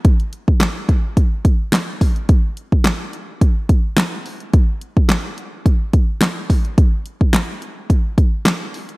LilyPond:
\new DrumStaff \with { instrumentName = "Drums" } \drummode { \time 4/4 \tempo 4 = 107 <hh bd>16 hh16 hh16 bd16 <hc hh sn>8 <hh bd>8 <hh bd>8 <hh bd>8 <hc hh sn>8 <hho bd>16 hh16 | <hh bd>8 hh16 bd16 <hc hh sn>8 hh8 <hh bd>8 <hh bd>8 <hc hh sn>8 hho16 hh16 | <hh bd>8 hh16 bd16 <hc hh sn>8 hh8 <hh bd>8 <hh bd>8 <hc hh sn>8 <hho bd>16 hh16 | <hh bd>8 hh16 bd16 <hc hh sn>8 hh8 <hh bd>8 <hh bd>8 <hc hh sn>8 hho16 hh16 | }